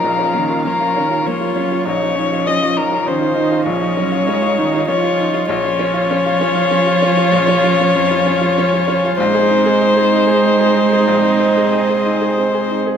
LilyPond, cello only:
\new Staff \with { instrumentName = "Cello" } { \clef bass \time 3/4 \key des \major \tempo 4 = 98 f8 ees8 f8 ees8 f8 ges8 | f2 ees8 ees8 | f8 ges8 aes8 ees8 f4 | f2.~ |
f2. | aes2.~ | aes2~ aes8 r8 | }